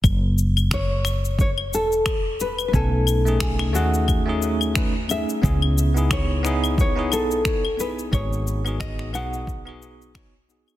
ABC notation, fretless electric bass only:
X:1
M:4/4
L:1/8
Q:"Swing 16ths" 1/4=89
K:F#dor
V:1 name="Fretless electric bass" clef=bass
F,,,4- F,,, E,,,3 | B,,,3 D,,4 z | C,,4- C,, B,,,3 | G,,,3 B,,,4 z |]